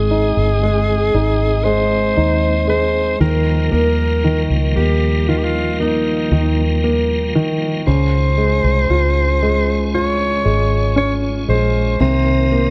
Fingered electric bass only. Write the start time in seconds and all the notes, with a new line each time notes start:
Already playing: G#1
0.37 G1
1.14 G#1
2.17 D#2
3.20 D#2
3.72 D#2
4.50 C#2
4.76 D#2
6.31 D#2
7.87 C#2
8.64 C2
8.89 C#2
10.45 G#1
11.48 A#1
12.00 C2